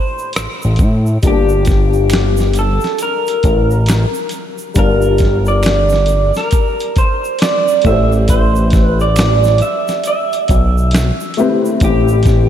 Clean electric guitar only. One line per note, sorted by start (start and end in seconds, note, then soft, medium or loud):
0.00 0.32 C5 medium
1.27 2.61 G4 medium
2.59 2.98 A4 medium
3.03 4.29 A#4 loud
4.79 5.48 A#4 medium
5.48 6.37 D5 medium
6.37 6.98 A#4 medium
6.98 7.41 C5 medium
7.42 7.82 D5 loud
7.87 8.29 E5 loud
8.30 8.81 C5 medium
8.81 9.01 B4 medium
9.01 9.61 D5 loud
9.62 10.06 E5 medium
10.07 11.35 E5 medium
11.84 12.49 G4 medium